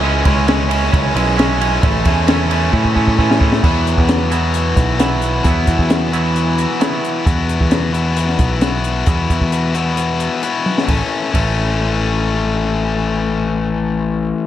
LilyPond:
<<
  \new Staff \with { instrumentName = "Distorted electric guitar" } { \time 4/4 \key a \major \tempo 4 = 132 <e gis cis'>8 <e gis cis'>8 <e gis cis'>8 <e gis cis'>8 <e gis cis'>8 <e gis cis'>8 <e gis cis'>8 <e gis cis'>8 | <e a cis'>8 <e a cis'>8 <e a cis'>8 <e a cis'>8 <e a cis'>8 <e a cis'>8 <e a cis'>8 <e a cis'>8 | <e b e' fis'>4. <e b e' fis'>4. <e b e' fis'>4 | <e b e' fis'>4. <e b e' fis'>4. <e b e' fis'>4 |
<e b e' fis'>4. <e b e' fis'>4. <e b e' fis'>4 | <e b e' fis'>4. <e b e' fis'>4. <e b e' fis'>4 | <e a cis'>8 r8 <e a cis'>2.~ | <e a cis'>1 | }
  \new Staff \with { instrumentName = "Clean electric guitar" } { \clef bass \time 4/4 \key a \major <cis gis cis' e'>8 <cis gis cis' e'>8 <cis gis cis' e'>8 <cis gis cis' e'>8 <cis gis cis' e'>8 <cis gis cis' e'>8 <cis gis cis' e'>8 <cis gis cis' e'>8 | <a, e gis cis' e'>8 <a, e gis cis' e'>8 <a, e gis cis' e'>8 <a, e gis cis' e'>8 <a, e gis cis' e'>8 <a, e gis cis' e'>8 <a, e gis cis' e'>8 <a, e gis cis' e'>8 | <e fis b e'>4. <e fis b e'>4. <e fis b e'>4 | <e fis b e'>4. <e fis b e'>4. <e fis b e'>4 |
r1 | r1 | r1 | r1 | }
  \new Staff \with { instrumentName = "Picked electric bass" } { \clef bass \time 4/4 \key a \major cis,8 cis,4. cis,8 b,,4. | a,,8 e,4. a,2 | e,8. e,4.~ e,16 b,,4. | e,8 e,16 e,2 r4 r16 |
e,8. e,4.~ e,16 b,,4. | e,8 e,16 e,2 r4 r16 | a,,16 r8. a,,2.~ | a,,1 | }
  \new DrumStaff \with { instrumentName = "Drums" } \drummode { \time 4/4 r8 <bd cymr>8 <cymr sn>8 cymr16 sn16 <bd cymr>8 cymr8 <cymr sn>8 cymr8 | <bd cymr>8 <bd cymr>8 <cymr sn>8 cymr8 bd16 bd16 bd16 bd16 bd16 sn16 bd16 sn16 | <cymc bd>8 hh16 bd16 <hh sn>8 hh8 hh8 <hh bd>8 <hh sn>8 hh8 | <hh bd>8 <hh bd>16 bd16 <hh sn>8 hh8 hh8 hh8 <hh sn>8 hh8 |
<hh bd>8 hh16 bd16 <hh sn>8 hh8 hh16 sn16 <hh bd>8 <hh sn>8 hh8 | <hh bd>8 <hh bd>16 bd16 hh8 hh8 hh8 hh8 hh8 tommh16 sn16 | <bd cymr>4 <bd cymr>4 r4 r4 | r4 r4 r4 r4 | }
>>